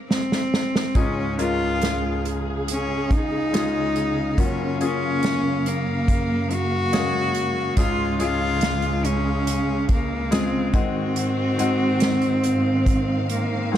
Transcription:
0.09 C4, snare
0.32 snare
0.54 snare
0.76 snare
0.95 C#2 G#2 C#3 G#3 C#4 F4 G#4 F5, kick, closed hi-hat
1.38 G#3 C#4 F4 A#4, closed hi-hat
1.81 snare, closed hi-hat
2.25 closed hi-hat
2.68 C#4, closed hi-hat
3.11 D#4, kick, closed hi-hat
3.53 G#3 C#4 F4 G#4, snare, closed hi-hat
3.96 closed hi-hat
4.38 F#2 C#3 A#3 C#4 F4 F#4, kick, closed hi-hat
4.80 A#3 C#4 F4 G#4, closed hi-hat
5.23 snare, closed hi-hat
5.66 A#3, closed hi-hat
6.08 kick, closed hi-hat
6.51 F#4, closed hi-hat
6.93 G#3 C#4 G#4 F5, snare, closed hi-hat
6.99 A#3
7.34 closed hi-hat
7.77 C#2 G#2 C#3 G#3 C#4 F4 G#4, kick, closed hi-hat
8.20 G#3 C#4 F4 G#4, closed hi-hat
8.61 snare, closed hi-hat
8.82 closed hi-hat
9.05 C#4, closed hi-hat
9.47 closed hi-hat
9.89 A#3, kick, closed hi-hat
10.31 C#3 G#3 C4 F4 G#4, snare, closed hi-hat
10.73 G#2 D#3 G#3 C4 D#4 F#4, kick, closed hi-hat
11.16 closed hi-hat
11.58 G#3 C4 D#4 F#4, closed hi-hat
12.00 snare, closed hi-hat
12.22 closed hi-hat
12.43 F5, closed hi-hat
12.86 kick, closed hi-hat
13.29 A#3, closed hi-hat
13.72 G#3 C4 D#4 F#4, snare

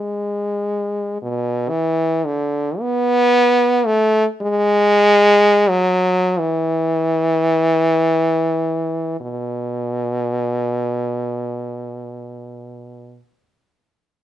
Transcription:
Already playing: G#3
1.22 B2
1.69 E3
2.26 D3
2.80 B3
3.86 A3
4.42 G#3
5.69 F#3
6.39 E3
9.21 B2

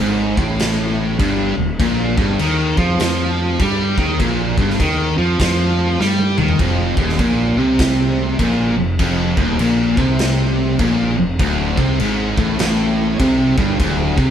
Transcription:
0.00 G#1 G#2
0.37 A1 A2, kick
0.60 snare, crash
1.19 G1 G2, kick, crash
1.57 D1 D2
1.79 A#1 A#2, kick, crash
2.17 G1 G2, kick
2.39 D#2 D#3, crash
2.77 F2 F3, kick
3.00 F2 F3, snare, crash
3.60 G2 G3, kick, crash
3.98 D#2 D#3, kick
4.20 A#1 A#2, kick, crash
4.58 G1 G2, kick
4.70 snare
4.80 D#2 D#3, kick, crash
5.18 F2 F3
5.40 F2 F3, kick, snare, crash
6.00 G2 G3, snare
6.19 high tom
6.38 D#2 D#3, mid tom
6.48 floor tom
6.59 F1 F2, kick, crash
6.97 D#1 D#2, kick
7.09 snare
7.19 A#1 A#2, kick, crash
7.56 C2 C3
7.79 kick, snare, crash
8.39 A#1 A#2, kick, crash
8.77 F1 F2
8.99 F1 F2, kick, crash
9.37 D#1 D#2, kick
9.59 A#1 A#2, crash
9.97 C2 C3, kick
10.19 snare, crash
10.79 A#1 A#2, kick, crash
11.18 F1 F2
11.39 D1 D2, kick, crash
11.77 C2 C3, kick
12.00 G#1 G#2, crash
12.38 A1 A2, kick
12.59 A1 A2, snare, crash
13.20 C2 C3, kick, crash
13.58 G1 G2, kick
13.80 D1 D2, kick, crash
14.18 C2 C3, kick

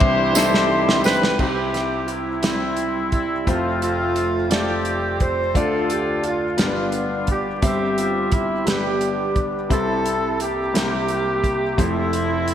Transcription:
Already playing: C2 C3 E3 G3 C4 D4 E4 G4 C5
0.00 kick, ride bell
0.35 G3 C4 D4 D#4 A4, snare, tambourine
0.43 E4
0.54 snare
0.70 E5 C6
0.89 snare
1.04 B4 C5 G5, snare, tambourine
1.23 snare
1.38 C2 C3 G3 C4 D#4 E4 G4 C5, kick, crash
1.46 E4
1.74 snare, closed hi-hat
2.08 E4, closed hi-hat
2.42 G3 C4 E4 G4 C5, snare, closed hi-hat
2.77 closed hi-hat
3.12 E4, kick, closed hi-hat
3.46 F1 F2 A3 C4 F4 G4 C5, kick, closed hi-hat
3.55 A4
3.82 A3 C4 F4, closed hi-hat
4.16 closed hi-hat
4.50 A3 C4 F4 G4 A4 D5, snare, closed hi-hat
4.85 closed hi-hat
5.20 C5, kick, closed hi-hat
5.54 D2 D3 A3 D4 F4 A4 D5, kick, closed hi-hat
5.90 G4, closed hi-hat
6.24 F4, closed hi-hat
6.57 G1 G2 B3 D4 F4 G4 A#4, snare, closed hi-hat
6.66 B4
6.92 closed hi-hat
7.27 G4, kick, closed hi-hat
7.32 G4
7.62 G1 G2 G3 C4 G4 C5 E5, kick, closed hi-hat
7.98 F4, closed hi-hat
8.32 E4, kick, closed hi-hat
8.65 G1 G2 G3 B3 D4 G4 B4, snare, closed hi-hat
9.01 closed hi-hat
9.36 kick, closed hi-hat
9.69 C2 C3 G3 C4 E4 G4 A4 C5, kick, closed hi-hat
10.06 closed hi-hat
10.40 A#3 E4 G4, closed hi-hat
10.73 C2 C3 A#3 C4 E4 G4 A#4, snare, closed hi-hat
11.08 closed hi-hat
11.44 kick, closed hi-hat
11.77 F1 F2 F3 A3 C4 E4 A4 C5, kick, closed hi-hat
11.82 E4
12.13 closed hi-hat
12.48 closed hi-hat

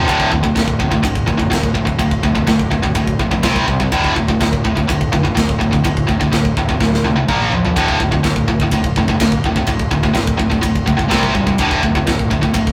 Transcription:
0.07 D1 D2 A2 D3, kick, ride bell
0.20 kick
0.32 D1 D2 A2, kick
0.43 D2 A2, kick
0.55 D1 D2 A2, kick, snare, ride bell
0.68 kick
0.79 D1 D2 A2, kick
0.91 D2 A2, kick
1.03 D1 D2 A2, kick, ride bell
1.15 kick
1.27 F1 D2 A2, kick
1.38 D2 A2, kick
1.50 D1 D2 A2, kick, snare, ride bell
1.63 kick
1.74 D1 D2 A2, kick
1.85 D2 A2, kick
1.98 D1 D2 A2, kick, ride bell
2.11 kick
2.23 D1 D2 A2, kick
2.35 D2 A2, kick
2.47 D1 D2 A2, kick, snare, ride bell
2.59 kick
2.71 D1 D2 A2, kick
2.83 D2 A2, kick
2.95 D1 D2 A2, kick, ride bell
3.07 kick
3.19 A#1 D2 A2, kick
3.31 D2 A2, kick
3.43 C2 C3 G3 C4, kick, snare, ride bell
3.56 kick
3.67 C2 C3 G3, kick
3.80 C3 G3, kick
3.92 D1 D2 A2 D3, kick, ride bell
4.04 kick
4.15 D1 D2 A2, kick
4.28 D2 A2, kick
4.40 D1 D2 A2, kick, snare, ride bell
4.53 kick
4.65 D1 D2 A2, kick
4.76 D2 A2, kick
4.88 D1 D2 A2, kick, ride bell
5.01 kick
5.12 F1 D2 A2, kick
5.23 D2 A2, kick
5.35 D1 D2 A2, kick, snare, ride bell
5.49 kick
5.59 D1 D2 A2, kick
5.71 D2 A2, kick
5.84 D1 D2 A2, kick, ride bell
5.97 kick
6.07 D1 D2 A2, kick
6.20 D2 A2, kick
6.31 D1 D2 A2, kick, snare, ride bell
6.45 kick
6.57 D1 D2 A2, kick
6.69 D2 A2, kick
6.80 D1 D2 A2, kick, snare
6.94 snare
7.04 C#2 D2 A2, high tom
7.16 D2 A2, high tom
7.28 A#1 A#2 F3 A#3, kick, mid tom
7.41 mid tom
7.51 A#1 A#2 F3, floor tom
7.65 A#2 F3, floor tom
7.76 D1 D2 A2 D3, kick, ride bell
7.88 kick
8.00 D1 D2 A2, kick
8.12 D2 A2, kick
8.24 D1 D2 A2, kick, snare, ride bell
8.36 kick
8.48 D1 D2 A2, kick
8.60 D2 A2, kick
8.71 D1 D2 A2, kick, ride bell
8.84 kick
8.96 F1 D2 A2, kick
9.08 D2 A2, kick
9.20 D1 D2 A2, kick, snare, ride bell
9.32 kick
9.44 D1 D2 A2, kick
9.56 D2 A2, kick
9.67 D1 D2 A2, kick, ride bell
9.79 kick
9.91 D1 D2 A2, kick
10.03 D2 A2, kick
10.14 D1 D2 A2, kick, snare, ride bell
10.27 kick
10.38 D1 D2 A2, kick
10.50 D2 A2, kick
10.62 D1 D2 A2, kick, ride bell
10.76 kick
10.86 C#2 D2 A2, kick
10.97 D2 A2, kick
11.09 C2 C3 G3 C4, kick, snare, ride bell
11.23 kick
11.34 E1 C3 G3, kick
11.46 C3 G3, kick
11.58 D1 D2 A2 D3, kick, ride bell
11.71 kick
11.82 D1 D2 A2, kick
11.95 D2 A2, kick
12.06 D1 D2 A2, kick, snare, ride bell
12.19 kick
12.30 D1 D2 A2, kick
12.42 D2 A2, kick
12.54 D1 D2 A2, kick, ride bell
12.67 kick

